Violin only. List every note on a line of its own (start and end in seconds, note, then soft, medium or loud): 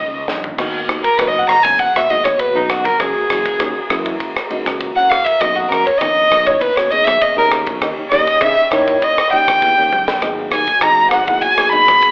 0.00 0.26 D#5 medium
1.04 1.19 A#4 medium
1.18 1.30 B4 medium
1.28 1.40 D#5 medium
1.39 1.49 F#5 medium
1.47 1.65 A#5 medium
1.63 1.81 G#5 medium
1.79 1.98 F#5 medium
1.97 2.12 E5 medium
2.10 2.26 D#5 medium
2.25 2.41 C#5 medium
2.39 2.57 B4 medium
2.56 2.71 D#4 medium
2.70 2.86 F#4 medium
2.85 3.02 A#4 medium
3.00 3.90 G#4 medium
4.96 5.11 F#5 medium
5.10 5.26 F5 loud
5.25 5.42 E5 medium
5.41 5.58 D#5 medium
5.56 5.71 F#4 medium
5.69 5.88 A#4 medium
5.86 6.00 C#5 medium
5.99 6.48 D#5 loud
6.47 6.63 C#5 medium
6.61 6.78 B4 medium
6.76 6.92 C#5 medium
6.91 7.06 D#5 medium
7.05 7.23 E5 loud
7.22 7.37 D#5 medium
7.38 7.46 A#4 medium
8.11 8.43 D#5 medium
8.41 8.72 E5 medium
8.73 9.05 C#5 medium
9.04 9.32 D#5 medium
9.33 10.19 G5 loud
10.53 10.84 G#5 medium
10.82 11.11 A#5 medium
11.11 11.43 F#5 medium
11.41 11.71 G#5 medium
11.72 12.11 B5 loud